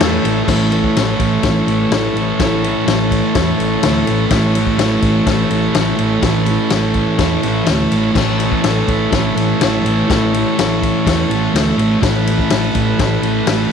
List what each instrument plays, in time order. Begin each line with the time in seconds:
Already playing: transistor combo organ E4 A4 C#5
0.00 fingered electric bass E2, distorted electric guitar A2 E3, snare, ride
0.05 distorted electric guitar A3
0.24 fingered electric bass A1, distorted electric guitar A3, ride
0.29 distorted electric guitar E3
0.45 fingered electric bass A1, distorted electric guitar A2, transistor combo organ E4 A4 C#5, kick, snare, crash
0.51 distorted electric guitar E3 A3
0.72 distorted electric guitar A3, ride
0.78 distorted electric guitar E3
0.84 kick
0.96 fingered electric bass A1, distorted electric guitar A2, snare, ride
1.01 distorted electric guitar E3 A3
1.20 fingered electric bass A1, kick, ride
1.43 fingered electric bass A1, distorted electric guitar A2, kick, snare, ride
1.47 distorted electric guitar E3 A3
1.66 fingered electric bass A1, distorted electric guitar A3, ride
1.72 distorted electric guitar E3
1.91 fingered electric bass A1, distorted electric guitar A2 E3, snare, ride
1.97 distorted electric guitar A3
2.14 fingered electric bass A1, distorted electric guitar A3, ride
2.22 distorted electric guitar E3
2.39 fingered electric bass A1, distorted electric guitar A2 E3, kick, snare, ride
2.44 distorted electric guitar A3
2.64 distorted electric guitar A3, ride
2.68 distorted electric guitar E3
2.86 fingered electric bass A1, distorted electric guitar A2 E3, snare, ride
2.91 distorted electric guitar A3
3.11 kick, ride
3.34 fingered electric bass E2, distorted electric guitar A2 E3, kick, snare, ride
3.40 distorted electric guitar A3
3.58 fingered electric bass A1, distorted electric guitar A3, ride
3.63 distorted electric guitar E3
3.82 fingered electric bass D2, distorted electric guitar A2 E3, snare, ride
3.87 distorted electric guitar A3
4.05 fingered electric bass A1, distorted electric guitar A3, ride
4.11 distorted electric guitar E3
4.29 fingered electric bass A1, distorted electric guitar A2, transistor combo organ E4 A4 C#5, kick, snare, ride
4.33 distorted electric guitar E3 A3
4.55 distorted electric guitar A3, ride
4.60 distorted electric guitar E3
4.67 kick
4.78 fingered electric bass A1, distorted electric guitar A2 E3, snare, ride
4.84 distorted electric guitar A3
5.02 fingered electric bass A1, kick, ride
5.26 fingered electric bass A1, distorted electric guitar A2 E3, kick, snare, ride
5.31 distorted electric guitar A3
5.50 fingered electric bass A1, distorted electric guitar A3, ride
5.55 distorted electric guitar E3
5.74 fingered electric bass A1, distorted electric guitar A2 E3, snare, ride
5.80 distorted electric guitar A3
5.97 fingered electric bass A1, distorted electric guitar A3, ride
6.02 distorted electric guitar E3
6.20 fingered electric bass A1, distorted electric guitar A2 E3, kick, snare, ride
6.25 distorted electric guitar A3
6.46 distorted electric guitar A3, ride
6.51 distorted electric guitar E3
6.70 fingered electric bass A1, distorted electric guitar A2 E3, snare, ride
6.76 distorted electric guitar A3
6.94 kick, ride
7.19 fingered electric bass E2, distorted electric guitar A2 E3, kick, snare, ride
7.25 distorted electric guitar A3
7.43 fingered electric bass A1, distorted electric guitar A3, ride
7.48 distorted electric guitar E3
7.65 fingered electric bass D2, distorted electric guitar A2 E3, snare, ride
7.71 distorted electric guitar A3
7.91 fingered electric bass A1, distorted electric guitar A3, ride
7.97 distorted electric guitar E3
8.13 fingered electric bass A1, distorted electric guitar A2, transistor combo organ E4 A4, kick, snare, crash
8.18 distorted electric guitar E3 A3, transistor combo organ C#5
8.39 distorted electric guitar A3, ride
8.44 distorted electric guitar E3
8.52 kick
8.62 fingered electric bass A1, distorted electric guitar A2 E3, snare, ride
8.67 distorted electric guitar A3
8.88 fingered electric bass A1, kick, ride
9.11 fingered electric bass A1, distorted electric guitar A2 E3, kick, snare, ride
9.16 distorted electric guitar A3
9.36 fingered electric bass A1, distorted electric guitar A3, ride
9.41 distorted electric guitar E3
9.59 fingered electric bass A1, distorted electric guitar A2 E3, snare, ride
9.63 distorted electric guitar A3
9.84 fingered electric bass A1, distorted electric guitar A3, ride
9.89 distorted electric guitar E3
10.08 fingered electric bass A1, distorted electric guitar A2 E3, kick, snare, ride
10.13 distorted electric guitar A3
10.34 distorted electric guitar A3, ride
10.38 distorted electric guitar E3
10.57 fingered electric bass A1, distorted electric guitar A2 E3, snare, ride
10.62 distorted electric guitar A3
10.82 kick, ride
11.05 fingered electric bass E2, distorted electric guitar A2 E3, kick, snare, ride
11.11 distorted electric guitar A3
11.29 fingered electric bass A1, distorted electric guitar A3, transistor combo organ A5, ride
11.35 distorted electric guitar E3
11.53 fingered electric bass D2, distorted electric guitar A2 E3, snare, ride
11.57 distorted electric guitar A3, transistor combo organ E5
11.77 fingered electric bass A1, distorted electric guitar A3, ride
11.82 distorted electric guitar E3
12.01 fingered electric bass A1, distorted electric guitar A2 E3, transistor combo organ E4 A4 B4, kick, snare, ride
12.06 distorted electric guitar A3
12.27 distorted electric guitar A3, ride
12.32 distorted electric guitar E3
12.39 kick
12.50 fingered electric bass A1, distorted electric guitar A2 E3, snare, ride
12.55 distorted electric guitar A3
12.75 fingered electric bass A1, kick, ride
12.99 fingered electric bass A1, distorted electric guitar A2 E3, kick, snare, ride
13.04 distorted electric guitar A3
13.22 fingered electric bass A1, distorted electric guitar A3, ride
13.27 distorted electric guitar E3
13.47 fingered electric bass A1, distorted electric guitar A2 E3, snare, ride
13.52 distorted electric guitar A3